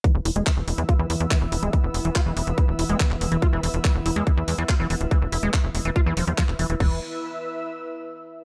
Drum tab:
CC |----------------|----------------|----------------|----------------|
HH |x-oxx-oxx-oxx-ox|x-oxx-oxx-oxx-ox|x-oxx-oxx-oxx-ox|x-oxx-oxx-oxx-ox|
CP |----x-------x---|----x-------xx--|----x-------x---|----x-------xx--|
BD |o---o---o---o---|o---o---o---o---|o---o---o---o---|o---o---o---o---|

CC |x---------------|
HH |----------------|
CP |----------------|
BD |o---------------|